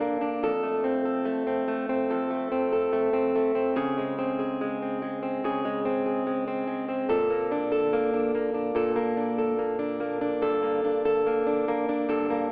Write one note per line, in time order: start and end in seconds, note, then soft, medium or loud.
0.00 0.42 G2 medium
0.00 0.51 A#3 soft
0.00 0.20 D4 medium
0.00 0.43 A4 medium
0.21 0.51 D4 soft
0.43 2.09 F2 medium
0.43 1.04 A4 medium
0.63 1.24 A3 soft
0.84 1.47 C4 soft
1.05 2.09 A4 medium
1.25 1.67 A3 medium
1.47 1.89 C4 soft
1.68 2.29 A3 medium
1.89 2.51 C4 medium
2.10 3.85 F2 medium
2.10 2.71 A4 medium
2.31 2.92 A3 soft
2.52 3.13 C4 medium
2.73 3.76 A4 medium
2.93 3.34 A3 medium
3.13 3.55 C4 medium
3.35 3.85 A3 medium
3.55 4.18 C4 soft
3.76 5.43 C#3 medium
3.76 4.38 G#4 medium
3.98 4.60 G#3 soft
4.18 4.80 C4 soft
4.39 5.43 G#4 soft
4.61 5.01 G#3 medium
4.82 5.21 C4 soft
5.02 5.64 G#3 medium
5.23 5.84 C4 soft
5.44 7.09 C#3 medium
5.44 6.05 G#4 medium
5.65 6.25 G#3 soft
5.85 6.46 C4 soft
6.06 7.09 G#4 soft
6.27 6.66 G#3 soft
6.48 6.87 C4 soft
6.67 7.17 G#3 soft
6.89 7.18 C4 soft
7.09 8.74 A#2 medium
7.09 7.71 A4 medium
7.30 7.93 A#3 soft
7.52 8.13 D4 soft
7.72 8.75 A4 soft
7.93 8.34 A#3 medium
8.14 8.54 D4 soft
8.35 8.95 A#3 medium
8.54 9.17 D4 soft
8.75 10.42 A#2 medium
8.75 9.38 A4 medium
8.96 9.58 A#3 soft
9.17 9.79 D4 soft
9.38 10.42 A4 soft
9.59 10.00 A#3 soft
9.79 10.21 D4 medium
10.00 10.62 A#3 soft
10.21 10.84 D4 soft
10.42 12.08 G2 medium
10.42 11.05 A4 medium
10.63 11.25 A#3 medium
10.84 11.45 D4 soft
11.05 12.09 A4 soft
11.26 11.67 A#3 medium
11.47 11.88 D4 soft
11.68 12.29 A#3 medium
11.89 12.50 D4 soft
12.09 12.52 G2 medium
12.09 12.52 A4 medium
12.30 12.52 A#3 medium